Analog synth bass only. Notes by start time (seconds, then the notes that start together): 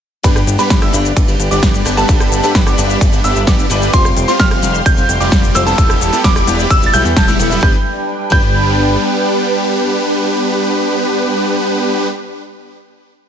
0.24 G1
0.47 G1
0.70 G1
0.93 G1
1.17 G1
1.40 G1
1.51 G1
1.63 G1
1.86 G1
2.09 G1
2.32 G1
2.55 G1
2.78 G1
3.01 G1
3.24 G1
3.36 G1
3.47 G1
3.70 G1
3.94 F1
4.17 F1
4.40 F1
4.63 F1
4.86 F1
5.09 F1
5.20 F1
5.32 F1
5.55 F1
5.78 E1
6.01 E1
6.24 E1
6.47 E1
6.70 E1
6.93 B1
7.05 E2
7.17 E1
7.40 E1
7.63 G1
8.32 G1